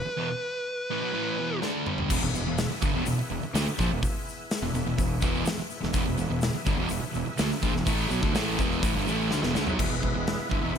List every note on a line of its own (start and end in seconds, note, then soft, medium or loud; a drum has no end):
0.00 1.59 B4 medium
0.05 muted distorted electric guitar stroke soft
0.05 muted overdriven electric guitar stroke medium
0.05 muted fingered electric bass stroke soft
0.17 0.29 E2 medium
0.17 0.29 B2 loud
0.91 1.01 A2 medium
0.91 1.02 E3 medium
1.02 1.12 B2 medium
1.02 1.14 F#3 medium
1.13 1.37 A2 medium
1.13 1.38 E3 medium
1.13 1.38 A3 medium
1.39 1.62 E2 medium
1.39 1.62 B2 medium
1.39 1.62 E3 medium
1.62 1.86 D3 medium
1.62 1.86 A3 medium
1.62 1.86 D4 medium
1.62 snare medium
1.86 2.10 G2 medium
1.86 2.10 D3 medium
1.86 2.10 G3 medium
1.86 mid tom medium
1.98 floor tom medium
2.09 2.21 E1 medium
2.09 2.21 E2 medium
2.09 2.22 B2 loud
2.09 5.90 B3 medium
2.09 5.90 E4 medium
2.09 5.90 G#4 medium
2.09 5.90 E5 medium
2.09 kick loud
2.09 crash loud
2.09 shaker loud
2.21 2.33 E1 medium
2.21 2.33 E2 medium
2.21 2.34 B2 medium
2.34 2.45 E1 medium
2.34 2.45 E2 medium
2.34 2.45 B2 medium
2.34 shaker medium
2.46 2.69 E1 medium
2.46 2.65 E2 medium
2.46 2.66 B2 medium
2.58 snare loud
2.58 open hi-hat medium
2.58 shaker medium
2.70 muted distorted electric guitar stroke medium
2.70 muted fingered electric bass stroke soft
2.70 muted overdriven electric guitar stroke medium
2.81 2.94 G1 loud
2.81 2.93 G2 medium
2.81 2.93 D3 medium
2.81 kick loud
2.81 shaker medium
2.94 3.05 E1 medium
2.94 3.05 E2 medium
2.94 3.06 B2 medium
3.06 3.17 E1 medium
3.06 3.18 E2 medium
3.06 3.19 B2 medium
3.06 open hi-hat medium
3.06 shaker medium
3.18 muted fingered electric bass stroke soft
3.18 muted overdriven electric guitar stroke medium
3.18 muted distorted electric guitar stroke medium
3.31 3.42 E1 medium
3.31 3.42 E2 medium
3.31 3.43 B2 medium
3.43 muted fingered electric bass stroke soft
3.43 muted distorted electric guitar stroke medium
3.43 muted overdriven electric guitar stroke medium
3.43 shaker soft
3.54 3.65 D2 medium
3.54 3.66 D3 medium
3.54 3.66 A3 loud
3.54 snare loud
3.54 open hi-hat medium
3.54 shaker medium
3.66 muted overdriven electric guitar stroke medium
3.66 muted fingered electric bass stroke soft
3.66 muted distorted electric guitar stroke medium
3.78 3.90 A#1 medium
3.78 3.90 A#2 loud
3.78 3.90 F3 loud
3.78 kick medium
3.78 shaker medium
3.90 4.02 E1 medium
3.90 4.02 E2 medium
3.90 4.03 B2 medium
4.03 kick loud
4.03 open hi-hat medium
4.03 shaker medium
4.29 shaker medium
4.51 snare loud
4.51 open hi-hat medium
4.51 shaker medium
4.62 4.73 E1 medium
4.62 4.73 E2 medium
4.62 4.74 B2 medium
4.74 4.85 E1 medium
4.74 4.85 E2 medium
4.74 4.86 B2 medium
4.74 shaker medium
4.86 4.98 E1 medium
4.86 4.97 E2 medium
4.86 4.97 B2 medium
4.98 5.21 E1 medium
4.98 5.17 E2 medium
4.98 5.18 B2 medium
4.98 kick loud
4.98 open hi-hat medium
4.98 shaker medium
5.21 5.45 E1 loud
5.21 5.45 E2 loud
5.21 5.46 B2 loud
5.21 5.46 E3 loud
5.21 kick loud
5.21 shaker medium
5.34 shaker soft
5.45 muted overdriven electric guitar stroke medium
5.45 muted distorted electric guitar stroke medium
5.45 muted fingered electric bass stroke soft
5.45 snare loud
5.45 open hi-hat medium
5.45 shaker loud
5.57 muted overdriven electric guitar stroke medium
5.57 muted distorted electric guitar stroke medium
5.57 muted fingered electric bass stroke soft
5.57 shaker soft
5.70 shaker medium
5.83 5.94 E1 medium
5.83 5.94 E2 medium
5.83 5.94 B2 medium
5.83 snare soft
5.92 6.06 E1 medium
5.92 6.05 E2 loud
5.92 6.06 B2 loud
5.92 9.75 B3 medium
5.92 9.74 E4 medium
5.92 9.74 G#4 medium
5.92 9.75 E5 medium
5.92 kick loud
5.92 open hi-hat medium
5.92 shaker medium
6.07 6.18 E1 medium
6.07 6.17 E2 medium
6.07 6.17 B2 medium
6.18 6.30 E1 medium
6.18 6.29 E2 medium
6.18 6.30 B2 medium
6.18 shaker medium
6.30 6.53 E1 medium
6.30 6.50 E2 medium
6.30 6.50 B2 medium
6.41 snare loud
6.41 open hi-hat medium
6.41 shaker medium
6.54 muted fingered electric bass stroke soft
6.54 muted distorted electric guitar stroke medium
6.54 muted overdriven electric guitar stroke medium
6.66 6.77 G1 medium
6.66 6.77 G2 medium
6.66 6.78 D3 loud
6.66 kick loud
6.66 shaker medium
6.78 6.89 E1 loud
6.78 6.89 E2 medium
6.78 6.89 B2 loud
6.89 7.02 E1 medium
6.89 7.00 E2 medium
6.89 7.03 B2 medium
6.89 open hi-hat medium
6.89 shaker medium
7.01 muted distorted electric guitar stroke medium
7.01 muted fingered electric bass stroke soft
7.01 muted overdriven electric guitar stroke medium
7.14 7.26 E1 medium
7.14 7.25 E2 medium
7.14 7.27 B2 medium
7.14 shaker medium
7.26 muted distorted electric guitar stroke medium
7.26 muted fingered electric bass stroke soft
7.26 muted overdriven electric guitar stroke medium
7.26 shaker soft
7.38 7.50 D2 loud
7.38 7.50 D3 medium
7.38 7.50 A3 loud
7.38 snare loud
7.38 open hi-hat medium
7.38 shaker medium
7.51 muted distorted electric guitar stroke medium
7.51 muted overdriven electric guitar stroke medium
7.51 muted fingered electric bass stroke soft
7.51 snare soft
7.51 shaker soft
7.62 7.73 A#1 medium
7.62 7.74 A#2 medium
7.62 7.74 F3 loud
7.62 kick loud
7.62 shaker medium
7.74 7.86 E1 medium
7.74 7.87 E2 medium
7.74 7.85 B2 medium
7.74 snare soft
7.85 8.09 A1 loud
7.85 8.09 A2 loud
7.85 8.10 E3 medium
7.85 8.10 A3 loud
7.85 kick loud
7.85 open hi-hat medium
7.85 shaker medium
8.10 8.22 B1 medium
8.10 8.21 B2 medium
8.10 8.22 F#3 medium
8.10 shaker medium
8.21 8.34 D2 medium
8.21 8.33 D3 medium
8.21 8.33 A3 loud
8.21 kick loud
8.21 shaker soft
8.33 8.57 A1 medium
8.33 8.57 A2 medium
8.33 8.57 E3 medium
8.33 8.58 A3 loud
8.33 snare loud
8.33 open hi-hat medium
8.33 shaker medium
8.57 8.81 E1 medium
8.57 8.81 E2 medium
8.57 8.81 B2 medium
8.57 8.80 E3 loud
8.57 kick loud
8.57 shaker medium
8.72 shaker soft
8.81 8.94 A1 loud
8.81 8.94 A2 medium
8.81 8.94 E3 loud
8.81 kick loud
8.81 open hi-hat medium
8.81 shaker medium
8.93 9.06 G1 medium
8.93 9.05 G2 medium
8.93 9.04 D3 medium
9.05 9.30 A1 loud
9.05 9.29 A2 medium
9.05 9.30 E3 medium
9.05 9.30 A3 medium
9.05 shaker medium
9.21 shaker soft
9.31 9.43 D2 medium
9.31 9.42 D3 medium
9.31 9.42 A3 loud
9.31 snare medium
9.31 shaker medium
9.42 9.55 E1 medium
9.42 9.54 E2 medium
9.42 9.54 B2 medium
9.42 snare medium
9.42 shaker soft
9.55 9.67 D2 medium
9.55 9.65 D3 medium
9.55 9.66 A3 loud
9.55 snare medium
9.55 shaker medium
9.66 9.79 B1 loud
9.66 9.77 B2 medium
9.66 9.78 F#3 medium
9.66 floor tom medium
9.66 shaker soft
9.77 9.91 E1 medium
9.77 9.89 E2 medium
9.77 9.89 B2 medium
9.77 10.48 G#3 medium
9.77 10.48 B3 soft
9.77 10.49 E4 medium
9.77 kick loud
9.77 crash loud
9.82 9.91 E2 medium
9.82 9.91 B2 medium
9.90 10.02 E1 medium
9.90 10.01 E2 medium
9.90 10.01 B2 medium
10.02 10.14 E1 medium
10.02 10.13 E2 medium
10.02 10.14 B2 medium
10.02 kick medium
10.14 10.38 E1 medium
10.14 10.34 E2 medium
10.14 10.35 B2 medium
10.27 snare loud
10.27 open hi-hat medium
10.38 muted distorted electric guitar stroke medium
10.38 muted fingered electric bass stroke soft
10.38 muted overdriven electric guitar stroke medium
10.49 10.63 G1 medium
10.49 10.60 G2 medium
10.49 10.61 D3 medium
10.49 10.78 E4 medium
10.49 kick medium
10.61 10.75 E1 medium
10.61 10.73 E2 medium
10.61 10.73 B2 loud
10.74 10.78 E2 medium
10.74 10.78 B2 medium